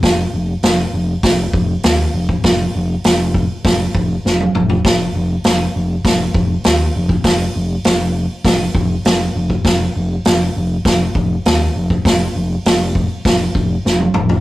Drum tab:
HH |o---o---o---o---|o---o---o-------|o---o---o---o---|o---o---o---o---|
SD |o---o---o---o---|o---o---o---o---|o---o---o---o---|o---o---o---o---|
T1 |----------------|-------------o--|----------------|----------------|
T2 |----------------|--------------o-|----------------|----------------|
FT |----------------|---------------o|----------------|----------------|
BD |o-------o-o----o|o-----o-o-o-----|o-------o-o----o|o-------o-o----o|

HH |o---o---o---o---|o---o---o-------|
SD |o---o---o---o---|o---o---o---o---|
T1 |----------------|-------------o--|
T2 |----------------|--------------o-|
FT |----------------|---------------o|
BD |o-------o-o----o|o-----o-o-o-----|